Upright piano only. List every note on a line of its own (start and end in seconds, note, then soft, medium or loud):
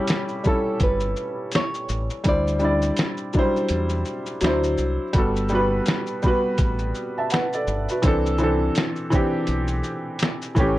0.00 0.44 G3 medium
0.00 0.45 C#4 medium
0.00 0.47 E4 medium
0.00 0.29 G4 medium
0.00 0.49 A4 medium
0.44 1.51 G3 medium
0.44 1.51 C#4 medium
0.44 1.52 E4 medium
0.49 1.53 A4 medium
2.24 2.52 G3 medium
2.24 2.53 D4 medium
2.24 2.54 E4 medium
2.29 2.55 C5 medium
2.59 3.16 G3 medium
2.59 3.17 D4 medium
2.59 3.18 E4 medium
2.64 3.19 D5 medium
3.34 3.41 F#3 medium
3.34 4.41 D4 medium
3.34 4.42 E4 medium
3.39 4.43 G3 medium
3.39 4.43 C5 loud
4.41 5.02 F#3 medium
4.41 5.03 D4 medium
4.41 5.03 E4 medium
4.46 5.04 C5 medium
5.13 5.42 G3 medium
5.13 5.43 B3 medium
5.13 5.43 F#4 medium
5.18 5.44 A4 medium
5.50 6.06 G3 medium
5.50 6.07 B3 medium
5.50 6.07 F#4 medium
5.55 6.08 B4 medium
6.23 7.29 G3 medium
6.23 7.30 B3 medium
6.23 6.97 F#4 medium
6.28 6.97 B4 loud
7.18 7.32 E5 medium
7.18 7.32 A5 medium
7.32 7.52 B4 medium
7.32 7.51 F#5 medium
7.55 7.88 A4 medium
7.55 7.88 D5 medium
7.90 8.24 F#4 medium
7.90 8.24 B4 medium
8.02 8.31 E3 medium
8.02 8.32 C4 medium
8.02 8.33 D4 medium
8.07 8.33 A4 loud
8.38 8.95 E3 medium
8.38 8.95 C4 medium
8.38 8.96 D4 medium
8.43 8.97 A4 medium
9.10 10.18 E3 medium
9.10 10.18 C4 medium
9.10 10.19 D4 medium
9.15 10.20 G4 medium
10.55 10.79 E3 medium
10.55 10.79 A3 medium
10.55 10.79 C#4 medium
10.60 10.79 G4 medium